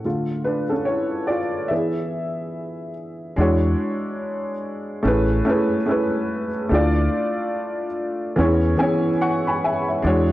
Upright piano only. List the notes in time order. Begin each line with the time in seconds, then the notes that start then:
0.04 D3 A3 F4
0.44 D4 B4
0.70 C#4 A4
0.85 E4 C#5
1.27 F4 D5
1.68 E3 B3 E4 G#4 E5
3.36 G#3 D4 E4 F#4
3.41 C#5
5.03 A3 C#4 E4 G#4
5.07 B4
5.45 A3 C#4 E4 G#4
5.49 B4
5.86 A3 C#4 E4 G#4
5.91 B4
6.69 A3 D4 E4 F4
6.74 D5
8.36 E3 B3 C#4 E4 G#4
8.41 C#5
8.77 E3 B3 C#4 E4 G#4 G#5
8.82 C#5
9.21 F#5 C#6
9.47 G#5 B5
9.64 E5 G#5
9.88 C#5 E5
10.02 G#3 D4 E4 F#4
10.07 C#5